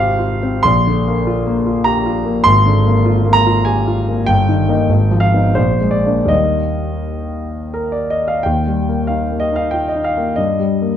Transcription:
0.00 0.61 G#1 medium
0.00 0.68 C3 medium
0.00 0.43 C4 medium
0.00 0.19 F4 medium
0.00 0.18 G4 soft
0.00 0.67 C5 medium
0.00 0.68 F5 medium
0.19 0.56 F4 soft
0.43 0.66 C4 soft
0.63 2.42 A#1 medium
0.63 1.85 C6 loud
0.87 1.19 D3 soft
1.08 1.39 A#3 medium
1.27 1.59 F4 medium
1.47 1.79 A#3 medium
1.66 1.98 F4 medium
1.84 2.06 G4 soft
1.84 2.45 A#5 medium
2.06 2.38 F4 medium
2.25 2.46 A#3 medium
2.44 4.23 G#1 medium
2.44 3.34 C6 loud
2.66 2.98 D3 medium
2.85 3.17 A#3 medium
3.06 3.38 F4 medium
3.25 3.58 A#3 medium
3.33 3.65 A#5 loud
3.47 3.79 F4 medium
3.65 3.87 G4 soft
3.65 3.97 G#5 medium
3.88 4.20 F4 medium
4.08 4.28 A#3 medium
4.27 4.87 G1 medium
4.27 5.21 G5 loud
4.49 4.81 D#3 soft
4.69 4.87 A#3 medium
4.69 4.87 D#4 medium
4.89 5.55 G#1 medium
5.11 5.47 F3 soft
5.20 5.56 F5 medium
5.34 5.55 B3 soft
5.34 5.55 D#4 soft
5.55 6.29 A#1 medium
5.55 5.93 C5 medium
5.81 6.21 G#3 soft
5.91 6.30 D5 medium
6.06 6.26 A#3 soft
6.06 6.29 D4 soft
6.25 8.38 D#2 soft
6.25 8.38 G3 soft
6.25 8.39 A#3 soft
6.25 8.09 D#5 medium
6.29 8.40 D#4 soft
7.74 7.92 A#4 medium
7.92 8.11 D5 medium
8.10 8.28 D#5 medium
8.28 8.44 F5 medium
8.43 10.34 D#2 soft
8.43 9.08 G5 medium
8.67 9.01 G3 soft
8.89 9.23 A#3 soft
9.07 9.44 D#4 soft
9.07 9.40 F5 medium
9.31 9.65 A#3 soft
9.40 9.56 D#5 medium
9.52 9.86 D#4 soft
9.52 9.72 F5 medium
9.71 9.95 F4 soft
9.71 9.88 G5 medium
9.88 10.05 D#5 medium
9.95 10.30 D#4 soft
10.04 10.37 F5 medium
10.17 10.38 A#3 soft
10.36 10.97 G2 soft
10.36 10.97 D#5 medium
10.59 10.93 G3 soft
10.82 10.97 A#3 soft

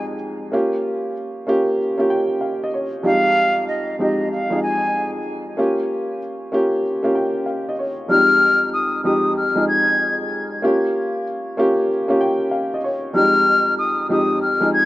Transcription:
0.00 0.54 F2 medium
0.00 0.55 G#3 medium
0.00 0.55 C4 medium
0.00 0.54 D#4 medium
0.00 0.54 G4 medium
0.00 0.14 G#4 medium
0.52 1.12 A#3 medium
0.52 1.13 C#4 medium
0.52 1.13 F4 medium
0.52 1.13 G4 loud
1.47 1.77 A#3 medium
1.47 1.77 C#4 medium
1.47 1.78 F4 medium
1.47 1.78 G4 loud
1.98 2.66 A#3 medium
1.98 2.66 C#4 medium
1.98 2.67 F4 medium
1.98 2.67 G4 loud
2.10 2.40 G5 medium
2.41 2.60 F5 medium
2.64 2.74 D#5 medium
2.74 3.03 C#5 medium
3.03 3.64 F2 medium
3.03 3.12 G3 medium
3.03 3.65 C4 medium
3.03 3.65 D#4 medium
3.03 3.65 G4 medium
3.03 3.64 F5 loud
3.10 3.68 G#3 medium
3.68 3.97 D#5 medium
3.99 4.29 F2 medium
3.99 4.30 G#3 medium
3.99 4.30 C4 medium
3.99 4.30 D#4 medium
3.99 4.31 G4 medium
3.99 4.29 D#5 medium
4.31 4.60 F5 medium
4.50 5.18 F2 medium
4.50 5.18 G#3 medium
4.50 5.19 C4 medium
4.50 5.19 D#4 medium
4.50 5.19 G#4 medium
4.63 5.11 G#5 medium
5.57 6.18 A#3 medium
5.57 6.18 C#4 medium
5.57 6.18 F4 medium
5.57 6.19 G4 loud
6.52 6.82 A#3 medium
6.52 6.83 C#4 medium
6.52 6.83 F4 medium
6.52 6.83 G4 loud
7.03 7.71 A#3 medium
7.03 7.71 C#4 medium
7.03 7.72 F4 medium
7.03 7.72 G4 medium
7.15 7.45 G5 medium
7.46 7.65 F5 medium
7.69 7.79 D#5 medium
7.79 8.08 C#5 medium
8.08 8.70 F2 medium
8.08 8.18 G3 medium
8.08 8.70 C4 medium
8.08 8.70 D#4 medium
8.08 8.71 G4 medium
8.08 8.70 F6 loud
8.15 8.73 G#3 medium
8.74 9.02 D#6 medium
9.04 9.35 F2 medium
9.04 9.35 G#3 medium
9.04 9.35 C4 medium
9.04 9.36 D#4 medium
9.04 9.36 G4 medium
9.04 9.33 D#6 medium
9.37 9.65 F6 medium
9.55 10.23 F2 medium
9.55 10.24 G#3 medium
9.55 10.24 C4 medium
9.55 10.24 D#4 medium
9.55 10.25 G#4 medium
9.68 10.16 G#6 medium
10.62 11.23 A#3 medium
10.62 11.23 C#4 medium
10.62 11.24 F4 medium
10.62 11.24 G4 loud
11.57 11.88 A#3 medium
11.57 11.88 C#4 medium
11.57 11.88 F4 medium
11.57 11.89 G4 loud
12.08 12.76 A#3 medium
12.08 12.77 C#4 medium
12.08 12.77 F4 medium
12.08 12.77 G4 loud
12.21 12.50 G5 medium
12.51 12.70 F5 medium
12.74 12.84 D#5 medium
12.84 13.14 C#5 medium
13.13 13.75 F2 medium
13.13 13.23 G3 medium
13.13 13.75 C4 medium
13.13 13.76 D#4 medium
13.13 13.76 G4 medium
13.13 13.75 F6 loud
13.20 13.78 G#3 medium
13.79 14.07 D#6 medium
14.09 14.40 F2 medium
14.09 14.40 G#3 medium
14.09 14.41 C4 medium
14.09 14.41 D#4 medium
14.09 14.41 G4 medium
14.09 14.40 D#6 medium
14.42 14.70 F6 medium
14.60 14.85 F2 medium
14.60 14.85 G#3 medium
14.60 14.85 C4 medium
14.60 14.85 D#4 medium
14.60 14.85 G#4 medium
14.73 14.85 G#6 medium

